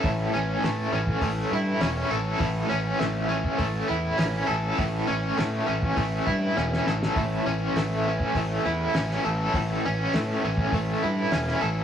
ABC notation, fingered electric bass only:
X:1
M:4/4
L:1/8
Q:1/4=101
K:A
V:1 name="Fingered electric bass" clef=bass
A,,, A,,, A,, A,,, A,,, =G,, E,,, A,,, | A,,, A,,, A,,,2 A,,, E,, A,,, A,,, | A,,, A,,, A,, A,,, A,,, =G,, E,,, A,,, | A,,, A,,, A,,,2 A,,, E,, A,,, A,,, |
A,,, A,,, A,, A,,, A,,, =G,, E,,, A,,, |]